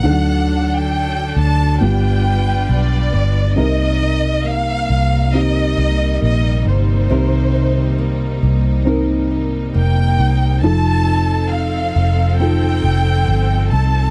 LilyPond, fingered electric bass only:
\new Staff \with { instrumentName = "Fingered electric bass" } { \clef bass \time 4/4 \key d \phrygian \tempo 4 = 68 d,4. d,8 g,,4 b,,8 g,,8 | \key c \dorian c,4. c,4 c,8 bes,,8 g,,8 | c,4. c,4. f,,8 c,8 | f,,4. f,,4 f,,8 g,,8 c,8 | }